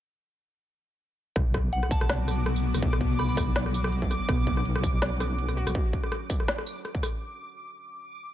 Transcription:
1.35 B1 D3 F#3 B3 F#4 D6, kick, cross-stick, closed hi-hat
1.54 kick, cross-stick, closed hi-hat
1.73 F#5, closed hi-hat
1.83 cross-stick
1.91 A5, kick, closed hi-hat, tambourine
2.01 cross-stick
2.09 snare, closed hi-hat
2.28 cross-stick, closed hi-hat, tambourine
2.46 cross-stick, closed hi-hat
2.56 tambourine
2.74 B1, cross-stick, tambourine
2.82 B1, kick, closed hi-hat
2.93 cross-stick
3.01 kick, closed hi-hat
3.19 B5, cross-stick, closed hi-hat
3.29 B5
3.37 kick, cross-stick, closed hi-hat, tambourine
3.56 C#4, snare, closed hi-hat
3.66 cross-stick
3.74 closed hi-hat, tambourine
3.84 cross-stick
3.92 closed hi-hat
4.02 kick
4.11 cross-stick, closed hi-hat, tambourine
4.29 B1 B3, kick, cross-stick, closed hi-hat
4.47 B2, kick, closed hi-hat
4.57 cross-stick
4.66 closed hi-hat
4.76 cross-stick
4.84 kick, closed hi-hat, tambourine
5.02 cross-stick, snare, closed hi-hat
5.20 B3, cross-stick, closed hi-hat, tambourine
5.39 closed hi-hat
5.49 cross-stick, tambourine
5.57 F#4
5.67 B1, cross-stick, tambourine
5.75 kick, closed hi-hat
5.93 kick, closed hi-hat
6.03 cross-stick
6.12 cross-stick, closed hi-hat
6.30 kick, closed hi-hat, tambourine
6.40 cross-stick
6.48 snare, closed hi-hat
6.58 cross-stick
6.67 closed hi-hat, tambourine
6.85 cross-stick, closed hi-hat
6.95 kick
7.03 cross-stick, closed hi-hat, tambourine

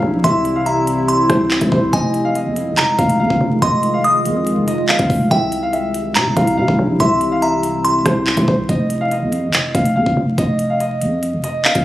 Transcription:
Already playing: C3 G3 E4 A#5
0.03 A#1
0.24 C2 E5 C6, kick, closed hi-hat
0.45 closed hi-hat
0.56 F5
0.66 E5 A#5, closed hi-hat
0.87 closed hi-hat
1.08 C6, closed hi-hat
1.30 C2 C5, kick, cross-stick, closed hi-hat
1.51 clap
1.61 C2, kick, closed hi-hat
1.72 C2 C5, kick
1.93 F1 D#3 G#3 F4 D#5 G#5, kick, closed hi-hat
2.14 closed hi-hat
2.25 F5
2.35 D#5, closed hi-hat
2.46 F2
2.56 closed hi-hat
2.72 F1
2.78 A#5, clap, closed hi-hat
2.98 F1 F5, kick, closed hi-hat
3.10 closed hi-hat
3.20 F2 F5
3.30 F1, kick
3.41 F1
3.62 F1 D#5 C6, kick, closed hi-hat
3.83 closed hi-hat
3.94 F5
4.04 D#5 D#6, closed hi-hat
4.25 F2, closed hi-hat
4.47 closed hi-hat
4.57 F1
4.68 D#5, closed hi-hat
4.89 F5, clap
4.99 F1, kick, closed hi-hat
5.10 F1, kick, open hi-hat
5.31 C2 C3 G3 E4 E5 G5, kick, closed hi-hat
5.52 closed hi-hat
5.63 F5
5.73 E5, closed hi-hat
5.94 closed hi-hat
6.15 C3 A#5, clap, closed hi-hat
6.26 C2
6.37 C2 F5, kick, closed hi-hat
6.47 closed hi-hat
6.57 C3 F5
6.68 C2, kick
6.79 A#1
7.00 C2 E5 C6, kick, closed hi-hat
7.21 closed hi-hat
7.32 F5
7.42 E5 A#5, closed hi-hat
7.63 closed hi-hat
7.84 C6, closed hi-hat
8.06 C2 C5, kick, cross-stick, closed hi-hat
8.27 clap
8.37 C2, kick, closed hi-hat
8.48 C2 C5, kick
8.69 F1 D#5, kick, closed hi-hat
8.90 closed hi-hat
9.01 F5
9.11 D#5, closed hi-hat
9.22 F2
9.32 closed hi-hat
9.48 F1
9.54 clap, closed hi-hat
9.75 F1 F5, kick, closed hi-hat
9.86 closed hi-hat
9.96 F2 F5
10.06 F1, kick
10.17 F1
10.38 F1 D#5, kick, closed hi-hat
10.59 closed hi-hat
10.70 F5
10.80 D#5, closed hi-hat
11.01 F2, closed hi-hat
11.23 closed hi-hat
11.33 F1
11.44 D#5, closed hi-hat
11.65 F5, clap
11.75 F1, kick, closed hi-hat

